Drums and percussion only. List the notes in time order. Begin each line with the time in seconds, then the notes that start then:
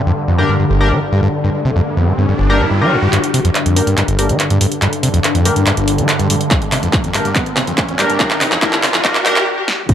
3.13 clap, closed hi-hat
3.24 closed hi-hat
3.34 open hi-hat
3.45 closed hi-hat
3.55 clap, closed hi-hat
3.66 closed hi-hat
3.76 open hi-hat
3.87 closed hi-hat
3.98 clap, closed hi-hat
4.08 closed hi-hat
4.19 open hi-hat
4.29 closed hi-hat
4.40 clap, closed hi-hat
4.50 closed hi-hat
4.61 open hi-hat
4.72 closed hi-hat
4.82 clap, closed hi-hat
4.93 closed hi-hat
5.03 open hi-hat
5.14 closed hi-hat
5.24 clap, closed hi-hat
5.35 closed hi-hat
5.45 open hi-hat
5.56 closed hi-hat
5.67 clap, closed hi-hat
5.77 closed hi-hat
5.88 open hi-hat
5.98 closed hi-hat
6.09 clap, closed hi-hat
6.19 closed hi-hat
6.30 open hi-hat
6.41 closed hi-hat
6.51 kick, clap, closed hi-hat
6.62 closed hi-hat
6.72 clap, open hi-hat
6.83 closed hi-hat
6.93 kick, clap, closed hi-hat
7.04 closed hi-hat
7.14 clap, open hi-hat
7.25 closed hi-hat
7.36 kick, clap, closed hi-hat
7.46 closed hi-hat
7.57 clap, open hi-hat
7.67 closed hi-hat
7.78 kick, clap, closed hi-hat
7.89 closed hi-hat
7.99 clap, open hi-hat
8.10 closed hi-hat
8.20 kick, clap, closed hi-hat
8.31 clap, closed hi-hat
8.41 clap, open hi-hat
8.52 clap, closed hi-hat
8.62 kick, clap, closed hi-hat
8.73 clap, closed hi-hat
8.83 clap, open hi-hat
8.94 clap, closed hi-hat
9.05 kick, clap, closed hi-hat
9.15 clap, closed hi-hat
9.26 clap, open hi-hat
9.36 clap, closed hi-hat
9.68 snare
9.89 kick, closed hi-hat